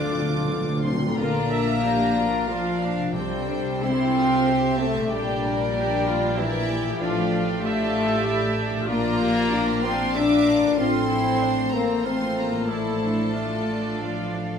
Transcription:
0.00 0.96 D2 medium
0.00 0.66 D3 medium
0.00 1.19 D3 medium
0.00 0.84 G3 medium
0.00 1.20 A3 soft
0.00 0.92 C4 medium
0.00 1.20 C4 soft
0.00 0.79 D4 medium
0.00 1.08 D4 soft
0.00 0.83 F4 medium
0.00 0.92 F4 medium
0.00 1.01 F4 soft
0.00 1.20 G4 medium
0.00 0.84 A4 soft
0.00 0.67 C5 medium
0.00 0.83 D5 medium
0.00 2.33 D5 medium
0.00 0.32 A5 medium
0.00 0.83 D6 medium
0.06 0.13 D3 medium
0.14 0.21 D3 medium
0.14 0.49 F5 soft
0.22 0.28 D3 medium
0.29 0.35 D3 medium
0.29 1.20 A5 medium
0.37 0.44 D3 medium
0.45 0.51 D3 medium
0.51 0.59 D3 medium
0.51 3.17 F5 medium
0.60 0.67 D3 medium
0.68 0.75 D3 medium
0.68 1.20 C5 medium
0.77 0.82 D3 loud
0.83 0.91 D3 loud
0.83 1.14 C4 medium
0.83 1.20 A4 medium
0.83 1.15 C6 medium
0.92 0.98 D3 loud
0.99 3.08 A#2 medium
0.99 1.06 D3 loud
0.99 3.17 F4 soft
1.05 1.15 D3 loud
1.05 3.11 A#3 soft
1.09 3.05 D4 soft
1.14 3.10 A#1 medium
1.14 3.10 A#2 medium
1.14 2.49 A#3 loud
1.14 1.80 D4 medium
1.14 1.48 F4 medium
1.14 3.15 A#4 medium
1.14 2.49 A#5 medium
1.18 3.11 A#4 medium
1.18 1.80 D5 medium
1.52 1.84 E5 medium
1.84 2.48 D4 medium
1.84 2.17 G4 medium
1.84 3.11 D5 medium
2.16 2.48 F4 medium
2.48 3.13 F3 medium
2.48 2.79 D4 medium
2.48 2.81 F4 medium
2.48 3.15 F5 medium
2.81 3.14 D4 medium
2.97 5.05 C3 medium
3.01 4.97 G3 medium
3.06 5.01 D4 soft
3.10 5.07 C2 medium
3.10 4.11 C3 medium
3.10 5.05 D5 medium
3.14 5.07 C3 medium
3.14 3.81 G3 medium
3.14 3.47 C4 medium
3.14 3.81 A4 medium
3.14 4.45 C5 medium
3.14 3.82 G5 medium
3.48 3.82 D4 medium
3.83 4.79 C4 loud
3.83 4.16 E4 medium
3.83 5.08 G4 medium
3.83 4.46 A4 medium
3.83 4.80 C6 medium
4.16 4.48 F4 medium
4.48 4.79 G4 medium
4.48 5.11 E5 medium
4.79 5.11 A3 medium
4.79 5.11 C4 medium
4.79 5.11 A5 medium
4.93 6.95 A#2 medium
4.98 6.97 G3 medium
5.02 6.90 D4 medium
5.06 5.73 D4 medium
5.06 5.41 G4 medium
5.06 6.95 D5 medium
5.06 6.38 D5 medium
5.06 6.35 G5 medium
5.11 7.01 A#1 medium
5.11 7.01 A#2 medium
5.11 6.39 G3 loud
5.43 6.38 A#4 medium
5.75 6.37 D4 medium
5.75 6.06 G4 medium
6.07 6.39 F4 medium
6.38 7.01 E3 loud
6.38 7.01 E4 medium
6.38 7.01 G4 medium
6.38 6.69 A#4 medium
6.38 7.00 D5 medium
6.38 7.01 E5 medium
6.69 7.64 G4 medium
6.83 8.83 A2 medium
6.87 8.75 F3 medium
6.92 10.77 D4 medium
6.96 7.46 F3 medium
6.96 8.84 D5 medium
7.00 8.85 A1 medium
7.00 8.86 A2 medium
7.00 7.64 D4 medium
7.00 7.31 F4 medium
7.00 7.63 D5 medium
7.00 7.63 F5 medium
7.32 7.63 F4 medium
7.63 8.56 A3 loud
7.63 8.27 F4 medium
7.63 8.87 G4 medium
7.63 8.87 D5 medium
7.63 8.89 E5 medium
7.63 8.58 A5 medium
8.26 8.58 E4 medium
8.57 8.88 D4 medium
8.72 10.72 A#2 medium
8.76 10.64 F3 medium
8.80 10.68 F4 medium
8.85 10.75 A#1 medium
8.85 9.20 D4 medium
8.85 9.50 F4 medium
8.85 10.79 D5 medium
8.85 10.13 D5 medium
8.85 9.80 A#5 medium
8.89 10.75 A#2 medium
8.89 9.80 A#3 loud
8.89 9.51 F4 medium
9.20 9.52 G4 medium
9.51 9.84 D4 medium
9.51 10.15 F4 medium
9.51 10.16 G4 medium
9.83 10.15 C4 loud
9.83 10.46 D4 medium
9.83 10.16 C6 medium
10.15 10.79 D4 loud
10.15 10.79 F4 medium
10.15 10.79 A#4 medium
10.15 10.47 E5 medium
10.15 10.78 D6 loud
10.47 10.79 D4 medium
10.61 12.51 A2 medium
10.65 12.55 F3 medium
10.70 12.59 F4 medium
10.74 14.59 A1 medium
10.74 14.59 A2 medium
10.74 11.73 C4 loud
10.74 11.09 F4 medium
10.74 12.70 C5 medium
10.79 11.41 A4 medium
10.79 12.05 C5 medium
10.79 11.72 C6 medium
11.09 11.41 E4 medium
11.41 11.73 D4 medium
11.41 14.59 A4 medium
11.73 12.06 A#3 loud
11.73 12.03 C4 medium
11.73 12.05 A#5 medium
12.04 12.69 C4 medium
12.04 12.37 C4 loud
12.04 12.69 F4 medium
12.04 12.69 C5 medium
12.04 12.38 C6 medium
12.38 12.70 A#3 medium
12.38 12.70 A#5 medium
12.52 14.59 A2 medium
12.56 14.59 F3 soft
12.61 14.59 F4 soft
12.65 14.59 D5 soft
12.69 14.02 A3 medium
12.69 13.33 E4 medium
12.69 13.34 C5 medium
12.69 13.99 A5 medium
13.01 13.32 D4 medium
13.33 13.66 D4 medium
13.33 14.00 F4 medium
13.33 14.59 D5 medium
13.67 14.33 D4 medium
14.01 14.59 F3 medium
14.01 14.35 F4 medium
14.01 14.59 F5 medium
14.34 14.59 D4 medium
14.52 14.59 A#2 soft

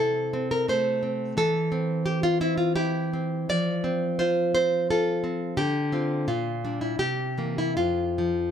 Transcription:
0.00 1.33 C3 medium
0.00 0.32 C4 medium
0.00 1.03 E4 medium
0.00 0.48 A4 loud
0.33 1.02 C4 medium
0.51 0.68 A#4 medium
0.68 1.38 A3 medium
0.68 1.02 C5 loud
1.03 1.37 C4 medium
1.37 3.45 E3 medium
1.37 2.02 A4 loud
1.72 2.40 C4 medium
2.06 2.22 G4 loud
2.23 2.40 F4 medium
2.41 3.12 C4 medium
2.41 2.57 E4 loud
2.58 2.75 F4 medium
2.76 3.49 E4 medium
2.76 3.46 G4 loud
3.13 3.50 C4 medium
3.49 5.54 F3 medium
3.49 4.17 D5 loud
3.84 4.54 C4 medium
4.19 4.89 F4 medium
4.19 4.53 C5 medium
4.55 5.22 C4 medium
4.55 4.88 C5 loud
4.90 5.58 F4 medium
4.90 5.55 A4 loud
5.24 5.58 C4 medium
5.57 6.26 D3 medium
5.57 6.25 G4 loud
5.92 6.25 C4 medium
5.92 6.25 F4 medium
6.28 6.98 A#2 medium
6.28 6.80 F4 medium
6.65 6.97 G3 soft
6.65 6.97 D4 medium
6.81 6.99 E4 medium
6.99 7.75 C3 medium
6.99 7.55 G4 medium
7.38 7.74 E3 soft
7.38 7.74 A#3 soft
7.58 7.76 E4 medium
7.77 8.51 F2 medium
7.77 8.51 F4 medium
8.18 8.51 F3 medium

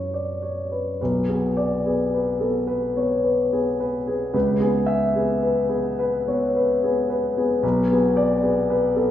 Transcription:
0.00 0.96 F#2 soft
0.00 1.02 C#4 soft
0.00 1.02 E4 soft
0.00 0.72 B4 soft
0.00 0.42 C#5 soft
0.14 0.42 D5 soft
0.42 0.88 C#5 soft
0.72 1.00 B4 soft
1.01 4.31 B1 soft
1.01 1.47 B4 soft
1.28 1.74 B3 soft
1.28 1.74 G#4 soft
1.57 2.02 D5 soft
1.85 2.30 B3 soft
1.85 2.30 G#4 soft
2.14 2.58 B4 soft
2.41 2.85 B3 soft
2.41 2.68 A4 soft
2.67 3.13 B4 soft
2.96 3.41 B3 soft
2.96 3.25 C#5 soft
3.24 3.69 B4 soft
3.53 3.96 B3 soft
3.53 3.96 G#4 soft
3.80 4.23 B4 soft
4.07 4.34 B3 soft
4.07 4.34 G#4 soft
4.33 7.59 C#2 soft
4.33 4.77 B4 soft
4.60 5.04 B3 soft
4.60 5.04 G#4 soft
4.86 5.31 E5 medium
5.16 5.60 B3 soft
5.16 5.60 G#4 soft
5.43 5.88 B4 soft
5.69 6.15 B3 soft
5.69 5.99 G#4 soft
5.99 6.44 B4 soft
6.28 6.72 B3 soft
6.28 6.55 C#5 soft
6.56 6.99 B4 soft
6.84 7.26 B3 soft
6.84 7.26 G#4 soft
7.10 7.52 B4 soft
7.37 7.63 B3 soft
7.37 7.64 G#4 soft
7.63 9.11 B1 soft
7.63 8.06 B4 soft
7.91 8.32 B3 soft
7.91 8.33 G#4 soft
8.17 8.58 D5 medium
8.43 8.85 B3 soft
8.43 8.85 G#4 soft
8.70 9.11 B4 soft
8.96 9.11 B3 soft
8.96 9.11 A4 soft

